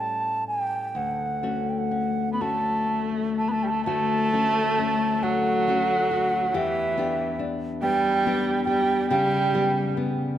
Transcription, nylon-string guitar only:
0.00 0.94 A2 medium
0.00 1.04 G3 soft
0.00 1.43 C#4 soft
0.00 1.04 G4 soft
0.95 3.85 D2 medium
1.43 2.40 A3 soft
1.43 1.91 C#4 soft
1.43 2.41 F#4 soft
1.91 2.41 C#4 soft
2.41 4.33 A3 soft
2.41 4.33 C#4 soft
2.41 3.87 F#4 soft
3.86 6.54 D2 medium
3.86 4.32 F#4 medium
4.33 5.22 A3 medium
4.33 4.77 C#4 soft
4.33 5.67 F#4 medium
4.78 5.67 C#4 medium
5.23 5.66 A3 medium
5.68 6.63 A3 medium
5.68 6.63 C#4 medium
5.68 6.10 F#4 medium
6.11 6.54 F#4 medium
6.54 9.11 E2 medium
6.54 6.99 G4 medium
6.97 7.82 B3 medium
6.97 7.38 D4 medium
6.97 8.26 G4 medium
7.39 8.24 D4 medium
7.83 8.26 B3 medium
8.26 9.20 B3 medium
8.26 9.20 D4 medium
8.26 8.67 G4 medium
8.67 9.11 G4 medium
9.11 10.38 C#3 medium
9.11 9.55 G4 medium
9.54 10.38 G3 medium
9.54 9.96 B3 medium
9.54 10.38 G4 medium
9.97 10.38 B3 medium

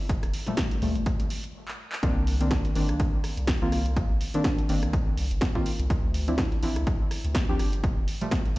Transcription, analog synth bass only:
0.00 0.17 G1 medium
0.23 0.31 F1 loud
0.82 0.97 D2 loud
0.96 1.03 G1 loud
2.03 2.59 C2 loud
2.76 2.91 G1 loud
2.89 2.97 C2 loud
3.37 3.54 C2 medium
3.62 3.69 C2 medium
3.72 4.04 C2 medium
4.10 4.18 A#1 loud
4.69 4.84 G1 loud
4.83 4.90 C2 loud
5.17 5.27 C2 medium
5.31 5.39 G1 loud
5.79 5.87 C2 loud
5.90 6.46 D2 loud
6.63 6.78 A1 loud
6.76 6.84 D2 loud
7.25 7.41 D2 medium
7.49 7.56 D2 loud
7.59 7.91 G1 medium
7.97 8.05 F1 loud

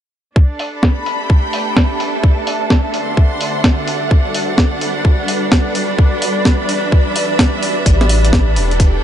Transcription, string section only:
0.36 9.04 D4 medium
0.50 4.75 A4 medium
0.77 2.24 B5 medium
1.23 2.24 G5 medium
2.99 6.75 F#5 medium
2.99 3.88 C6 medium
4.01 8.62 G3 medium
4.83 9.04 B5 medium
6.39 8.62 E5 medium
8.30 9.04 A4 medium
8.73 9.04 G5 medium

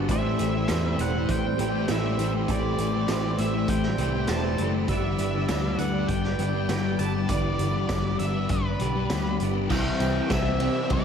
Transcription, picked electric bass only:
0.09 0.35 A1 medium
0.40 0.65 A1 medium
0.70 0.95 E2 medium
0.98 1.24 E1 medium
1.29 1.55 A1 medium
1.59 1.85 A1 medium
1.89 2.15 A1 medium
2.18 2.44 A1 medium
2.49 2.75 A1 medium
2.78 3.04 A1 medium
3.09 3.35 A1 medium
3.38 3.64 A1 medium
3.68 3.94 A1 medium
3.98 4.24 C2 medium
4.28 4.54 E1 medium
4.59 4.85 F#1 medium
4.88 5.14 G1 medium
5.19 5.45 G1 medium
5.49 5.75 D2 medium
5.78 6.05 D2 medium
6.09 6.35 G1 medium
6.38 6.65 G1 medium
6.68 6.95 G1 medium
6.99 7.25 G1 medium
7.29 7.55 G1 medium
7.59 7.85 G1 medium
7.90 8.16 G1 medium
8.20 8.46 G1 medium
8.50 8.76 G1 medium
8.80 9.06 B1 medium
9.11 9.36 D2 medium
9.40 9.66 G1 medium
9.70 9.89 C2 loud
10.00 10.19 C2 medium
10.31 10.68 C2 medium
10.90 11.05 C2 medium

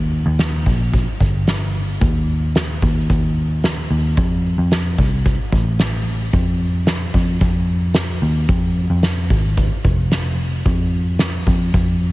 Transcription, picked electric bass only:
0.00 0.23 D#2 medium
0.26 0.64 D#2 medium
0.67 1.05 A#1 medium
1.21 1.97 G1 medium
2.01 2.78 D#2 medium
2.82 3.08 D#2 medium
3.10 3.87 D#2 medium
3.90 4.16 D#2 medium
4.18 4.56 F2 medium
4.58 4.96 F2 medium
4.98 5.37 C2 medium
5.53 6.30 A1 medium
6.33 7.11 F2 medium
7.14 7.40 F2 medium
7.41 8.18 F2 medium
8.22 8.48 D#2 medium
8.49 8.88 F2 medium
8.90 9.29 F2 medium
9.30 9.69 G#1 medium
9.85 10.62 F1 medium
10.66 11.43 F2 medium
11.47 11.72 F2 medium
11.74 12.12 F2 medium

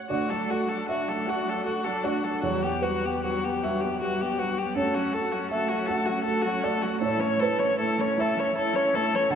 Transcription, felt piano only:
0.00 0.14 C#4 soft
0.00 0.13 F#4 soft
0.00 0.13 A4 soft
0.10 2.39 D2 medium
0.10 0.85 D5 medium
0.51 1.13 A4 soft
0.89 1.52 D4 soft
0.89 1.25 E5 medium
1.27 1.89 F#4 soft
1.27 2.00 F#5 medium
1.65 2.28 A4 soft
2.04 2.43 D4 soft
2.04 2.40 D5 medium
2.42 4.71 E2 soft
2.42 2.80 C#5 medium
2.81 3.47 G4 soft
2.81 3.59 B4 medium
3.24 3.87 B3 soft
3.64 4.24 F#4 soft
3.64 4.71 E5 medium
4.02 4.61 G4 soft
4.38 4.75 B3 soft
4.75 6.97 F#2 medium
4.75 5.47 C#5 medium
5.13 5.74 A4 soft
5.51 6.11 A3 soft
5.51 5.86 E5 medium
5.88 6.48 F#4 soft
5.88 6.60 F#5 medium
6.26 6.86 A4 soft
6.63 7.01 A3 soft
6.63 6.99 D5 medium
7.01 9.27 A2 medium
7.01 7.38 C#5 medium
7.40 8.15 B4 medium
7.40 8.03 C#5 soft
7.79 8.41 A3 soft
8.17 8.78 E4 medium
8.17 9.28 E5 medium
8.57 9.16 C#5 soft
8.94 9.32 A3 soft
9.30 9.35 D2 medium
9.30 9.35 F#5 medium

